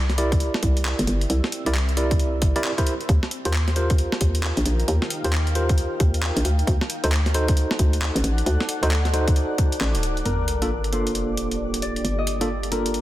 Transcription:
Already playing: C2 C4 G4 E5
0.10 snare, closed hi-hat
0.18 E4 G4 A#4 D5, closed hi-hat
0.32 kick, closed hi-hat
0.40 closed hi-hat
0.54 snare
0.63 C2, kick, closed hi-hat
0.77 closed hi-hat
0.85 clap
0.99 G1, closed hi-hat
1.07 G1, closed hi-hat
1.21 closed hi-hat
1.30 C2, closed hi-hat
1.44 snare
1.52 closed hi-hat
1.66 C2 E4 G4 A#4 D5, closed hi-hat
1.75 clap
1.89 closed hi-hat
1.97 E4 G4 A#4 D5, closed hi-hat
2.11 kick, closed hi-hat
2.19 closed hi-hat
2.42 G1, kick, closed hi-hat
2.56 E4 G4 A#4 D5, closed hi-hat
2.64 clap
2.78 E4 G4 A#4 C5, kick, closed hi-hat
2.87 closed hi-hat
3.01 closed hi-hat
3.09 D#2 D#4, kick, closed hi-hat
3.16 A#4
3.23 snare
3.31 closed hi-hat
3.36 F5
3.45 D#2 F4 G4 A#4 C5, closed hi-hat
3.54 clap
3.63 G5
3.68 snare, closed hi-hat
3.76 F4 G4 A#4 C5, closed hi-hat
3.90 kick, closed hi-hat
3.98 closed hi-hat
4.12 snare
4.21 D#2, kick, closed hi-hat
4.35 closed hi-hat
4.43 clap
4.57 A#1, closed hi-hat
4.66 A#1, closed hi-hat
4.80 closed hi-hat
4.88 D#2, closed hi-hat
5.02 snare
5.10 closed hi-hat
5.24 D#2 F4 G4 A#4 C5, closed hi-hat
5.33 clap
5.47 closed hi-hat
5.55 F4 G4 A#4 C5, closed hi-hat
5.69 kick, closed hi-hat
5.78 closed hi-hat
6.00 D#2, kick, closed hi-hat
6.14 closed hi-hat
6.23 clap
6.36 A#1, closed hi-hat
6.45 D2, closed hi-hat
6.59 F#5, closed hi-hat
6.65 D2 A4 D5, kick, closed hi-hat
6.81 snare
6.90 closed hi-hat
7.04 D2 D#4 F#4 A4 C5, closed hi-hat
7.12 clap
7.26 snare, closed hi-hat
7.34 D#4 F#4 A4 C5, closed hi-hat
7.48 kick, closed hi-hat
7.57 closed hi-hat
7.71 snare
7.79 D2, kick, closed hi-hat
7.93 closed hi-hat
8.02 clap
8.15 A1, closed hi-hat
8.24 A1, closed hi-hat
8.38 closed hi-hat
8.46 D2, closed hi-hat
8.61 snare
8.69 closed hi-hat
8.83 D2 D#4 F#4 A4 C5, closed hi-hat
8.91 clap
9.05 snare, closed hi-hat
9.13 D#4 F#4 A4 C5, closed hi-hat
9.28 kick, closed hi-hat
9.36 closed hi-hat
9.58 kick, closed hi-hat
9.72 closed hi-hat
9.81 A1, clap
9.95 D1, closed hi-hat
10.03 closed hi-hat
10.17 closed hi-hat
10.25 G1 G4 A#4, closed hi-hat, sub drop
10.48 closed hi-hat
10.62 A#3 D4 F4 A4, closed hi-hat
10.84 closed hi-hat
10.93 A#3 D4 F4 A4 C5, closed hi-hat
11.07 closed hi-hat
11.15 closed hi-hat
11.37 closed hi-hat
11.51 closed hi-hat
11.74 closed hi-hat
11.82 D5, closed hi-hat
11.96 closed hi-hat
12.04 G1, closed hi-hat
12.18 D#5
12.27 closed hi-hat
12.41 A#3 D4 F4 A4 D5, closed hi-hat
12.63 closed hi-hat
12.72 A#3 D4 F4 A4 A#4, closed hi-hat
12.86 closed hi-hat
12.94 closed hi-hat

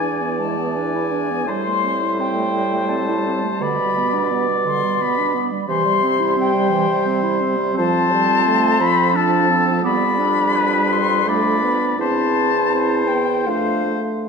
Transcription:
Already playing: E2 E3 D5 G#5
0.02 D4
0.21 B3
0.39 G#3 A5
0.58 B3
0.76 D4 G#5
0.96 E4
1.12 D4
1.31 B3
1.46 A2 G3 C5 C6
1.67 A3
1.85 C4
2.02 E4
2.19 C4 G5
2.37 A3
2.55 G3
2.72 A3
2.89 C4 A5
3.09 E4
3.27 C4
3.44 A3
3.61 B2 D3 D5 B5
3.80 G3
3.97 B3
4.13 D4
4.31 B3
4.49 G3
4.66 D3 C6
4.84 G3
5.01 B3 B5
5.18 D4
5.34 B3
5.52 G3
5.68 C3 E3 G3 C5 C6
5.85 G3
6.03 C4
6.20 E4
6.37 C4 G5
6.54 G3
6.70 E3
6.89 G3
7.06 C4
7.23 E4
7.41 C4
7.57 G3
7.74 F2 F3 C4 C5 A5
8.11 G3
8.46 A3
8.80 F3 B5
9.14 D4 A4 A5
9.48 C4
9.83 F2 G3 B3 D5 B5
10.18 D4
10.56 B4
10.92 C6
11.27 A3 D4 D5 B5
11.63 B3
11.99 E2 C4 E4 C5 A5
12.70 C4
12.74 C5
13.07 B3 G5
13.46 F2 A3 D4 C5 F5
13.86 A3

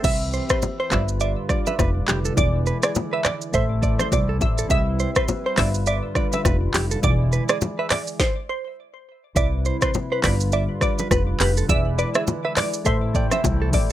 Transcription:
Already playing: C6
0.03 C2 E3 C4 G4 B4 E5, kick, crash, low conga, shaker
0.33 C5, shaker
0.49 B4 C5, kick, cross-stick, shaker
0.62 high bongo, low conga, shaker
0.80 C5
0.90 G1 D3 G3 D4 F4 B4 D5 E5, kick, cross-stick, clap, low conga, shaker
1.08 shaker
1.20 D5 E5, shaker
1.49 G3 D4 F4 D5, kick, cross-stick, shaker
1.66 B4 E5, low bongo, shaker
1.79 F1 B4, kick, cross-stick, high bongo, shaker
2.08 F1 G4, clap, high bongo, low bongo, shaker
2.25 A4, shaker
2.36 E1 E3 G#3 E4 G#4 D5, kick, low conga, shaker
2.66 B4, shaker
2.83 G#4 D5, cross-stick, shaker
2.95 high bongo, low conga, shaker
3.13 B4 E5
3.25 D5, cross-stick, clap, low conga, shaker
3.42 shaker
3.52 A1 C3 E3 A3 E4 A4 C5 E5, kick, shaker
3.81 A3 A4 C5 D5, kick, shaker
3.99 C5, cross-stick, low bongo, shaker
4.12 C2 D5, kick, high bongo, shaker
4.29 A4
4.41 A1 E5, kick, high bongo, low bongo, shaker
4.58 A4, shaker
4.69 C2 G3 C4 G4 B4 D#5 E5, kick, low conga, shaker
4.78 E5
4.99 C5, shaker
5.16 B4 C5, kick, cross-stick, shaker
5.28 high bongo, low conga, shaker
5.46 C5
5.56 G1 D3 G3 D4 F4 B4 D5 E5, kick, cross-stick, clap, open hi-hat, low conga, shaker
5.74 shaker
5.86 D5 E5, shaker
6.14 G3 D4 F4 B4 D5, kick, cross-stick, shaker
6.33 B4 E5, low bongo, shaker
6.45 F1 B4, kick, cross-stick, high bongo, shaker
6.74 F1 G4, clap, open hi-hat, high bongo, low bongo, shaker
6.91 A4, shaker
7.02 E1 E3 G#3 E4 F4 D5, kick, low conga, shaker
7.10 G#4
7.32 B4, shaker
7.49 G#4 D5, cross-stick, shaker
7.61 high bongo, low conga, shaker
7.79 B4 E5
7.90 D5, cross-stick, clap, open hi-hat, low conga, shaker
8.07 shaker
8.20 C5, kick, snare
8.49 C5
9.35 C2 C3 G3 C4 E4 B4 D5 E5, kick, low conga, shaker
9.65 C5, shaker
9.82 B4 C5, kick, cross-stick, shaker
9.94 high bongo, low conga, shaker
10.12 B4 C5
10.22 G1 D3 G3 D4 F4 B4 D5, kick, cross-stick, clap, open hi-hat, low conga, shaker
10.40 shaker
10.52 D5 E5, shaker
10.81 G3 D4 F4 B4 D5, kick, cross-stick, shaker
10.99 B4, low bongo, shaker
11.11 F1 B4, kick, cross-stick, high bongo, shaker
11.40 F1 G4 B4, clap, open hi-hat, low bongo, shaker
11.57 A4, shaker
11.68 E1 E3 G#3 E4 G#4 D5 E5, kick, low conga, shaker
11.98 B4 D5, shaker
12.15 G#4 E5, cross-stick, shaker
12.27 high bongo, low conga, shaker
12.45 B4 E5
12.57 D5, cross-stick, clap, open hi-hat, low conga, shaker
12.73 shaker
12.84 A1 C3 E3 A3 E4 A4 C5 E5, kick, shaker
13.13 A3 A4 C5 D5 G5, kick, shaker
13.31 C5 E5, cross-stick, low bongo, shaker
13.44 C2, kick, high bongo, shaker
13.62 A4
13.73 A1 D5, kick, open hi-hat, low bongo, shaker

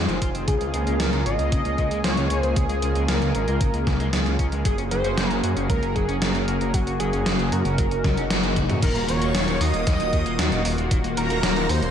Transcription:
Already playing: D#3 C4 F4 G#4
0.09 F1 F3, closed hi-hat
0.22 F1 F4, kick, closed hi-hat
0.35 F1 C4, closed hi-hat
0.48 C#2 C#3 A#3 G#4, kick, closed hi-hat
0.61 C#2 G#3, closed hi-hat
0.74 C#2 C#3, closed hi-hat
0.87 C#2 G#3, closed hi-hat
1.00 C#2 F3 A#4, snare, closed hi-hat
1.13 C#2 C#3, closed hi-hat
1.26 G#1 C#4 D#5, closed hi-hat
1.39 C#2 G#3, closed hi-hat
1.52 G#1 C#3, kick, closed hi-hat
1.65 C#2 G#3, closed hi-hat
1.78 C#2 C#3, kick, closed hi-hat
1.91 C#2 G#3, closed hi-hat
2.04 C#2 F3 C#5, snare, closed hi-hat
2.17 C#2 C#3, closed hi-hat
2.30 C#2 C#4, closed hi-hat
2.40 C#2 G#3 C5, closed hi-hat
2.56 C#2 C#3 G#4, kick, closed hi-hat
2.69 C#2 G#3, closed hi-hat
2.82 C#2 C#3, closed hi-hat
2.95 C#2 G#3, closed hi-hat
3.08 C#2 F3 A#4, snare, closed hi-hat
3.22 C#2 C#3, closed hi-hat
3.35 G#1 C#4 A#4, closed hi-hat
3.48 C#2 G#3, closed hi-hat
3.61 G#1 C#3, kick, closed hi-hat
3.74 C#2 G#3, closed hi-hat
3.87 C#2 C#3, kick, snare, closed hi-hat, mid tom
4.00 C#2 G#3, closed hi-hat
4.13 C#2 F3, snare, closed hi-hat
4.26 C#2 C#3, closed hi-hat
4.39 C#2 C#4, kick, closed hi-hat
4.52 C#2 G#3, closed hi-hat
4.65 F#1 F#3 F#4 G#4, kick, closed hi-hat
4.78 F#1 C#4, closed hi-hat
4.91 F#1 F#3 C5, closed hi-hat
5.04 F#1 C#4, closed hi-hat
5.17 F#1 A#3, snare, closed hi-hat
5.30 F#1 F#3, closed hi-hat
5.43 F#2 F#4, closed hi-hat
5.57 F#1 C#4, closed hi-hat
5.69 C#2 F#3 A#4, kick, closed hi-hat
5.83 F#1 C#4, closed hi-hat
5.95 F#1 F#3 G#4, kick, closed hi-hat
6.09 F#1 C#4, closed hi-hat
6.22 F#1 A#3 A#4, snare, closed hi-hat
6.35 F#1 F#3, closed hi-hat
6.48 F#1 F#4, closed hi-hat
6.61 F#1 C#4, closed hi-hat
6.74 F#1 F#3 F#4, kick, closed hi-hat
6.87 F#1 C#4, closed hi-hat
7.00 F#1 F#3 G#4, closed hi-hat
7.13 F#1 C#4, closed hi-hat
7.26 F#1 A#3, snare, closed hi-hat
7.39 F#1 F#3, closed hi-hat
7.52 F#2 F#4 A#4, closed hi-hat
7.65 F#1 C#4, closed hi-hat, mid tom
7.78 F#1 F#3, kick, closed hi-hat, swell
7.91 F#1 C#4, closed hi-hat
8.04 C#2 F#3, kick, snare, closed hi-hat, mid tom
8.17 F#1 C#4, closed hi-hat
8.30 F#1 A#3, snare, closed hi-hat, high tom
8.43 F#1 F#3, closed hi-hat, high tom
8.56 F#1 F#4, kick, closed hi-hat, mid tom
8.69 F#2 C#4, closed hi-hat, mid tom
8.82 D#1 D#3 A#3 F4 F#4 A#4 A#5, kick, closed hi-hat, crash
8.96 D#1 A#3, closed hi-hat
9.09 D#1 D#3 C#5 C#6, closed hi-hat
9.22 D#1 A#3, closed hi-hat
9.35 D#1 F#3, snare, closed hi-hat
9.48 D#1 D#3, closed hi-hat
9.61 D#2 D#4 D#5 D#6, open hi-hat
9.74 D#1 A#3, closed hi-hat
9.87 D#2 D#3 D#5 D#6, kick, snare, closed hi-hat
10.00 D#1 A#3, closed hi-hat
10.13 D#2 D#3, kick, closed hi-hat
10.26 D#1 A#3, closed hi-hat
10.39 D#2 F#3, snare, closed hi-hat
10.52 D#1 D#3, closed hi-hat
10.65 D#1 D#4, open hi-hat
10.78 D#1 A#3, closed hi-hat
10.91 D#1 D#3, kick, closed hi-hat
11.04 D#1 A#3, closed hi-hat
11.17 D#1 D#3 A#4 A#5, closed hi-hat
11.30 D#1 A#3, closed hi-hat
11.43 D#1 F#3, snare, closed hi-hat
11.56 D#1 D#3, closed hi-hat
11.69 D#2 D#4 C5 C6, open hi-hat
11.82 D#1 A#3, closed hi-hat

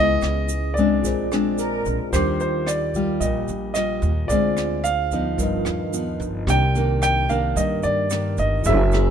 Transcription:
Already playing: C#2 C#3 G#3 B3 E4 G#4 B4 D#5
0.22 C#2, cross-stick, closed hi-hat, shaker
0.49 closed hi-hat, shaker
0.74 D5, kick, closed hi-hat, shaker
0.78 G#3 C4 D4
1.02 A#1 A#2 F4 G#4, kick, closed hi-hat, shaker
1.06 C5 D5
1.31 G#3 C4 D4 G#4, cross-stick, closed hi-hat, shaker
1.57 A#4, closed hi-hat, shaker
1.85 A#1, kick, closed hi-hat, shaker
2.11 D#2 D#3 G3 F4 G4 A#4 C5, kick, cross-stick, closed hi-hat, shaker
2.15 D4 F4 D6
2.40 C5, closed hi-hat, shaker
2.67 D5, cross-stick, closed hi-hat, shaker
2.94 G3 F4, kick, closed hi-hat, shaker
3.20 A#1 A#2 D#5, kick, closed hi-hat, shaker
3.48 A#1, closed hi-hat, shaker
3.74 G3 F4 D#5, cross-stick, closed hi-hat, shaker
4.02 D#2, kick, closed hi-hat, shaker
4.27 D2 F4 G#4 C5 D5, kick, closed hi-hat, shaker
4.31 D3 G#3 C4 F4 D5
4.57 cross-stick, closed hi-hat, shaker
4.84 F5, closed hi-hat, shaker
5.11 F3 B3 D#4, kick, closed hi-hat, shaker
5.37 G1 G2 F4 A#4 B4, kick, closed hi-hat, shaker
5.43 D#5
5.65 D#2, cross-stick, closed hi-hat, shaker
5.93 F3 B3 D#4, closed hi-hat, shaker
6.19 G1, kick, closed hi-hat, shaker
6.47 C2 C3 D#3 A#3 D4 G4 A#4 G5, kick, cross-stick, closed hi-hat, shaker
6.51 D5
6.75 D#3 A#3 D4, closed hi-hat, shaker
7.02 G5, cross-stick, closed hi-hat, shaker
7.29 D#3 A#3 D4 F5, kick, closed hi-hat, shaker
7.56 G2 D#5, kick, closed hi-hat, shaker
7.83 G2 D5, closed hi-hat, shaker
8.10 D#3 A#3 D4, cross-stick, closed hi-hat, shaker
8.38 G1 D#5, kick, closed hi-hat, shaker
8.62 F#1 E4 G#4, kick, closed hi-hat, shaker
8.67 F#3 A#3 E4 G#4 A#4 C#5 E5
8.92 A#3 E4 G#4, cross-stick, closed hi-hat, shaker

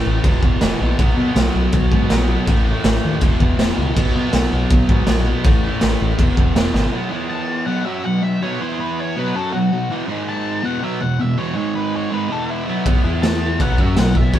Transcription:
Already playing: A2 E3 A3
0.06 A1
0.23 E1 E2 B2 E3, kick, crash
0.42 E1 B2 E3, kick
0.60 E1 E2 B2 E3, snare, crash
0.80 A#1 B2 E3
0.99 B1 B2 F#3 B3, kick, crash
1.17 B2 F#3 B3
1.36 B1 B2 F#3 B3, snare, crash
1.55 B1
1.72 B1, kick, crash
1.92 G#2 B3, kick
1.96 F#3
2.10 A#1 B2 F#3 B3, snare, crash
2.29 F#3 B3
2.47 A1 A2 E3, kick, crash
2.51 A3
2.65 E3 A3
2.84 A1 A2 E3 A3, snare, crash
3.04 D#2
3.21 E1 E2 B2 E3, kick, crash
3.40 E1 B2 E3, kick
3.58 E1 E2 B2 E3, snare, crash
3.77 C#2 B2 E3
3.96 B1 B2 F#3 B3, kick, crash
4.14 B2 F#3 B3
4.33 B1 B2 F#3 B3, snare, crash
4.53 B1
4.70 B1, kick, crash
4.89 G#2 F#3 B3, kick
5.07 A#1 B2 F#3, snare, crash
5.11 B3
5.26 F#3 B3
5.44 A1 A2 E3 A3, kick, crash
5.64 E3 A3
5.81 A1 A2 E3, snare, crash
5.85 A3
6.01 A1
6.19 E1 E2 B2 E3, kick, crash
6.37 E1 B2 E3, kick
6.55 E1 E2 B2 E3, snare, crash
6.74 G#1 B2 E3, snare
6.92 B2 F#3 B3
7.10 E3 B3 E4
7.30 A5
7.66 B2 F#3 B3 F#5
7.85 F#3 C#4 F#4 E5
8.04 B2 F#3 F#5
8.22 B2 F#3 E5
8.41 B2 F#3 B3 C#5
8.60 E3 B3 E4 C5
8.80 B4
9.00 C#5
9.17 B2 F#3 B3 B4
9.35 F#3 C#4 F#4 A4
9.53 B2 F#3 F#4
9.72 B2 F#3
9.90 E2 B2 E3
10.08 G#2 D#3 G#3
10.29 A5
10.63 E2 B2 E3 F#5
10.81 B2 F#3 B3 E5
11.00 E2 B2 F#5
11.19 E2 B2 E5
11.37 E2 B2 E3 C#5
11.55 G#2 D#3 G#3 C#5
11.75 B4
11.96 C#5
12.11 G#2 D#3 G#3 B4
12.29 E2 B2 E3 A4
12.50 E4
12.67 B2 F#3 B3
12.86 B1 B2 F#3 B3, kick, crash
13.04 E2 E3 B3 E4
13.22 A5, snare, crash
13.59 B1 B2 F#3 B3 F#5, kick, crash
13.78 F#2 F#3 C#4 F#4 E5, kick
13.96 B1 B2 F#3 F#5, snare, crash
14.15 B1 B2 F#3 E5, kick
14.33 B1 B2 F#3 B3 C#5, kick, crash

